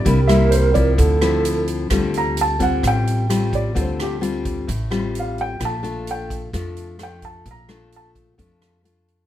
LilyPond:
<<
  \new Staff \with { instrumentName = "Grand piano" } { \time 4/4 \key d \minor \tempo 4 = 130 d''8 e''8 c''8 d''4. r4 | r8 bes''8 a''8 fis''8 g''4. d''8 | c''8 g'8 r2 f''8 g''8 | a''4 g''8 r4. g''8 a''8 |
bes''4 a''8 r2 r8 | }
  \new Staff \with { instrumentName = "Alto flute" } { \time 4/4 \key d \minor bes'2 a'4. r8 | r1 | r1 | r1 |
r1 | }
  \new Staff \with { instrumentName = "Tine electric piano" } { \time 4/4 \key d \minor <c' d' g'>8. r2. r16 | r1 | r1 | r1 |
r1 | }
  \new Staff \with { instrumentName = "Nylon-string guitar" } { \time 4/4 \key d \minor << { <g bes e'>8 <g bes e'>4 <f c' e'>4 <f c' e'>4. | <g c' f'>4. <g c' f'>4. <g c' f'>4 | <g c' f'>4 <g c' f'>4 r8 <g c' f'>4. | <a d' f'>8 <a d' f'>4. <a d' f'>4 <a d' f'>4 |
r8 <a d' f'>4. <a d' f'>4 <a d' f'>4 | } \\ { c2 d2 | d2 a,2 | d2 a,2 | bes,2 f2 |
bes,2 f2 | } >> }
  \new Staff \with { instrumentName = "Upright bass" } { \clef bass \time 4/4 \key d \minor c,2 d,2 | d,2 a,,2 | d,2 a,,2 | bes,,2 f,2 |
bes,,2 f,2 | }
  \new DrumStaff \with { instrumentName = "Drums" } \drummode { \time 4/4 <hh bd>8 <hh ss>8 hh8 <hh bd>8 <hh bd>8 <hh ss>8 hh8 hh8 | <hh bd ss>8 hh8 hh8 <hh bd>8 <hh bd ss>8 hh8 <hh ss>8 <hh bd>8 | <hh bd>8 <hh ss>8 hh8 <hh bd>8 <hh bd>8 <hh ss>8 hh8 hh8 | <hh bd ss>8 hh8 hh8 <hh bd>8 <hh bd ss>8 hh8 <hh ss>8 <hh bd>8 |
<hh bd>8 <hh ss>8 hh8 <hh bd>8 <hh bd>8 <hh ss>8 hh8 hh8 | }
>>